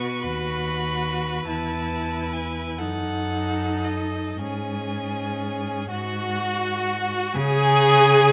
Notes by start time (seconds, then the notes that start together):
Already playing: B2 F#4 B4 C#6
0.22 D#2 F#4 B5
1.47 E2 E4 A5
2.33 G#5
2.78 F#2 D#4 A4 F#5
3.84 D#5
4.39 G#2 C#4 G#4 G#5
5.89 G#2 F#4 F#5
7.33 C#3 G#4 G#5